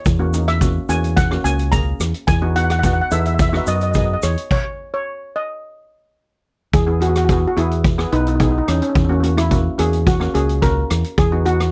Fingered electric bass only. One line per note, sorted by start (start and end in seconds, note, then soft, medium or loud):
0.06 0.77 E2 loud
0.89 1.37 E2 medium
1.44 1.92 C#2 medium
2.00 2.12 E2 medium
2.28 3.00 E2 loud
3.11 3.59 E2 loud
3.67 4.15 F#2 medium
4.23 4.35 E2 medium
6.73 7.45 E2 loud
7.57 8.04 E2 medium
8.13 8.60 B1 loud
8.68 8.80 E2 loud
8.95 9.67 E2 loud
9.79 10.27 E2 loud
10.35 10.82 C#2 medium
10.91 11.03 E2 loud
11.18 11.72 E2 loud